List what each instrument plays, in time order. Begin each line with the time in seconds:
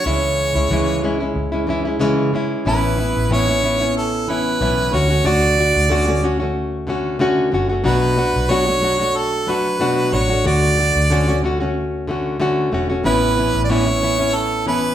0.05 fingered electric bass C#2, nylon-string guitar C#3 E3 G#3 C#4 E4, harmonica C#5
0.55 fingered electric bass C#2, nylon-string guitar G#3 C#4 E4
0.71 fingered electric bass C#2, nylon-string guitar C#3 E3 G#3 C#4 E4
1.02 nylon-string guitar E3 G#3 C#4 E4
1.20 nylon-string guitar G#3 C#4 E4
1.36 fingered electric bass C#2
1.52 nylon-string guitar G#3 C#4 E4
1.67 nylon-string guitar E3 G#3 C#4 E4
1.85 nylon-string guitar G#3 C#4 E4
2.00 nylon-string guitar C#3 E3 G#3 C#4 E4
2.33 nylon-string guitar E3 G#3 C#4 E4
2.65 fingered electric bass A1, nylon-string guitar A2 E3 B3 C#4 E4, harmonica B4
2.97 nylon-string guitar E3 B3 C#4 E4
3.16 fingered electric bass A1
3.30 nylon-string guitar A2 E3 B3 C#4 E4, harmonica C#5
3.48 nylon-string guitar B3 C#4 E4
3.62 nylon-string guitar E3 B3 C#4 E4
3.80 nylon-string guitar B3 C#4 E4
3.97 harmonica A4
4.27 nylon-string guitar E3 B3 C#4 E4, harmonica B4
4.60 fingered electric bass B1, nylon-string guitar A2 E3 B3 C#4 E4
4.92 fingered electric bass D2, nylon-string guitar D3 A3 C#4 F#4, harmonica C#5
5.10 nylon-string guitar A3 C#4 F#4
5.25 fingered electric bass D2, nylon-string guitar D3 A3 F#4, harmonica D5
5.57 nylon-string guitar D3 A3 F#4
5.76 fingered electric bass D2
5.89 nylon-string guitar D3 A3 C#4 F#4
6.07 nylon-string guitar A3 C#4 F#4
6.22 nylon-string guitar D3 A3 C#4 F#4
6.40 nylon-string guitar A3 C#4 F#4
6.87 nylon-string guitar D3 A3 C#4 F#4
7.19 nylon-string guitar D3 A3 C#4 F#4
7.52 fingered electric bass F#1, nylon-string guitar D3 A3 C#4 F#4
7.69 nylon-string guitar A3 C#4 F#4
7.84 fingered electric bass B1, nylon-string guitar B2 F#3 A3 D4 F#4, harmonica B4
8.16 nylon-string guitar F#3 A3 D4 F#4
8.36 fingered electric bass B1
8.49 nylon-string guitar B2 F#3 A3 D4 F#4, harmonica C#5
8.67 nylon-string guitar A3 D4 F#4
8.81 nylon-string guitar F#3 A3 D4 F#4
9.00 nylon-string guitar A3 D4 F#4
9.17 harmonica A4
9.47 nylon-string guitar F#3 A3 D4 F#4, harmonica B4
9.79 fingered electric bass C#2, nylon-string guitar B2 F#3 A3 D4 F#4
10.12 fingered electric bass A1, nylon-string guitar F#3 A3 D4 F#4, harmonica C#5
10.30 nylon-string guitar A3 D4 F#4
10.44 fingered electric bass D2, nylon-string guitar D3 A3 F#4, harmonica D5
10.77 nylon-string guitar D3 A3 F#4
10.95 fingered electric bass D2
11.10 nylon-string guitar D3 A3 C#4 F#4
11.28 nylon-string guitar A3 C#4 F#4
11.43 nylon-string guitar D3 A3 C#4 F#4
11.60 nylon-string guitar A3 C#4 F#4
12.07 nylon-string guitar D3 A3 C#4 F#4
12.40 nylon-string guitar D3 A3 C#4 F#4
12.72 fingered electric bass E1, nylon-string guitar D3 A3 C#4 F#4
12.90 nylon-string guitar A3 C#4 F#4
13.04 fingered electric bass A1, nylon-string guitar A2 E3 B3 C#4 E4, harmonica B4
13.36 nylon-string guitar E3 B3 C#4 E4
13.55 fingered electric bass A1
13.64 harmonica D5
13.69 nylon-string guitar A2 E3 B3 C#4 E4, harmonica C#5
13.87 nylon-string guitar B3 C#4 E4
14.02 nylon-string guitar E3 B3 C#4 E4
14.19 nylon-string guitar B3 C#4 E4
14.36 harmonica A4
14.66 nylon-string guitar E3 B3 C#4 E4, harmonica B4